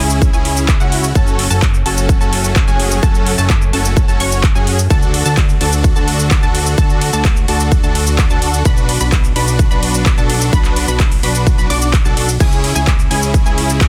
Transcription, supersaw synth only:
0.00 0.31 C#4 medium
0.00 0.31 E4 medium
0.00 0.31 G#4 medium
0.33 0.78 C#4 medium
0.33 0.77 E4 medium
0.33 0.77 G#4 medium
0.80 1.13 C#4 medium
0.80 1.13 E4 medium
0.80 1.13 F#4 loud
1.15 1.48 C#4 medium
1.15 1.48 F#4 medium
1.15 1.48 A4 loud
1.51 1.65 C#4 medium
1.51 1.65 F#4 medium
1.51 1.65 A4 loud
1.86 2.18 C#4 medium
1.86 2.18 F#4 medium
1.86 2.18 A4 medium
2.21 2.65 C#4 medium
2.21 2.65 F#4 medium
2.21 2.65 A4 medium
2.68 3.00 C#4 medium
2.68 3.00 F#4 medium
2.68 3.00 G#4 loud
3.03 3.35 F#4 medium
3.38 3.52 C#4 loud
3.38 3.52 F#4 medium
3.38 3.52 A4 loud
3.73 4.06 C#4 medium
3.73 4.06 F#4 medium
3.73 4.06 A4 medium
4.08 4.18 C#4 medium
4.08 4.18 F#4 medium
4.08 4.18 A4 medium
4.20 4.43 C#4 medium
4.20 4.43 F#4 medium
4.20 4.43 C#5 loud
4.55 4.78 C#4 medium
4.55 4.78 F#4 medium
4.55 4.78 G#4 medium
4.90 5.23 D4 medium
4.90 5.23 F#4 medium
4.90 5.23 A4 loud
5.26 5.40 D4 loud
5.26 5.40 F#4 medium
5.26 5.40 A4 loud
5.61 5.93 D4 medium
5.61 5.93 F#4 medium
5.61 5.93 A4 medium
5.96 6.40 D4 medium
5.96 6.40 F#4 medium
5.96 6.40 A4 medium
6.43 6.75 D4 medium
6.43 6.75 F#4 medium
6.43 6.75 A4 medium
6.78 7.10 D4 medium
6.78 7.10 F#4 medium
6.78 7.10 A4 medium
7.13 7.27 D4 medium
7.13 7.27 F#4 medium
7.13 7.27 A4 loud
7.48 7.81 D4 medium
7.48 7.81 F#4 medium
7.48 7.81 A4 medium
7.84 8.28 D4 medium
7.84 8.28 F#4 medium
7.84 8.28 A4 medium
8.30 8.63 D4 medium
8.30 8.63 F#4 medium
8.30 8.63 A4 loud
8.65 8.98 D4 medium
8.65 8.98 F#4 medium
8.65 8.98 B4 loud
9.01 9.15 D4 medium
9.01 9.15 F#4 medium
9.01 9.15 B4 loud
9.36 9.68 D4 medium
9.36 9.68 F#4 medium
9.36 9.68 B4 medium
9.71 10.15 D4 medium
9.71 10.15 F#4 medium
9.71 10.15 B4 medium
10.18 10.50 D4 medium
10.18 10.50 F#4 medium
10.18 10.50 A4 medium
10.53 10.85 D4 medium
10.53 10.85 F#4 medium
10.53 10.85 B4 loud
10.88 11.02 D4 medium
10.88 11.02 F#4 medium
10.88 11.02 B4 loud
11.23 11.56 D4 medium
11.23 11.56 F#4 medium
11.23 11.56 B4 medium
11.58 11.68 D4 medium
11.58 11.68 F#4 medium
11.58 11.68 B4 medium
11.70 11.93 D4 loud
11.70 11.93 F#4 medium
11.70 11.93 D5 loud
12.05 12.28 D4 medium
12.05 12.28 F#4 medium
12.05 12.28 A4 medium
12.40 12.73 C#4 medium
12.40 12.73 E4 medium
12.40 12.73 G#4 medium
12.76 12.90 C#4 medium
12.76 12.90 E4 medium
12.76 12.90 G#4 loud
13.11 13.43 C#4 medium
13.11 13.43 E4 medium
13.11 13.43 G#4 medium
13.46 13.88 C#4 medium
13.46 13.88 E4 medium
13.46 13.88 G#4 medium

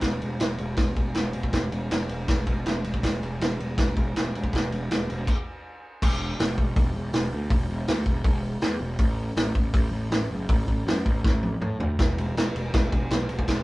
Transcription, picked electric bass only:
0.02 0.20 E1 medium
0.22 0.40 E1 medium
0.40 0.58 E1 medium
0.59 0.77 E1 medium
0.77 0.95 E1 medium
0.97 1.14 E1 medium
1.16 1.34 E1 medium
1.35 1.52 E1 medium
1.52 1.70 E1 medium
1.72 1.90 E1 medium
1.92 2.09 E1 medium
2.11 2.27 E1 medium
2.28 2.46 E1 medium
2.47 2.65 E1 medium
2.67 2.84 E1 medium
2.85 3.02 E1 medium
3.03 3.21 E1 medium
3.22 3.40 E1 medium
3.41 3.58 E1 medium
3.60 3.77 E1 medium
3.78 3.96 E1 medium
3.97 4.15 E1 medium
4.15 4.33 E1 medium
4.34 4.52 E1 medium
4.53 4.71 E1 medium
4.72 4.89 E1 loud
4.91 5.08 E1 medium
5.10 5.27 E1 medium
6.03 6.32 E1 loud
6.40 6.55 E1 medium
6.58 6.73 E1 loud
6.76 6.91 E1 loud
6.94 7.09 E1 medium
7.13 7.28 E1 loud
7.32 7.47 D2 medium
7.50 7.66 E1 medium
7.70 7.85 E1 loud
7.88 8.03 D2 medium
8.06 8.21 E1 medium
8.25 8.55 E1 loud
8.63 8.78 E2 loud
8.81 8.96 E1 medium
8.99 9.29 A1 loud
9.37 9.52 A1 medium
9.55 9.71 A1 medium
9.74 9.89 A1 loud
9.92 10.07 A1 medium
10.11 10.26 A1 loud
10.31 10.46 F#1 medium
10.50 10.64 A1 loud
10.68 10.83 A1 medium
10.86 11.01 F#2 medium
11.06 11.21 A1 loud
11.24 11.54 A1 loud
11.61 11.76 A2 medium
11.80 11.95 D2 medium
11.99 12.13 E1 medium
12.17 12.31 E1 loud
12.35 12.49 E1 medium
12.55 12.69 E1 medium
12.74 12.88 E1 loud
12.92 13.06 E1 medium
13.11 13.25 B1 loud
13.29 13.43 E1 medium
13.48 13.62 E1 medium

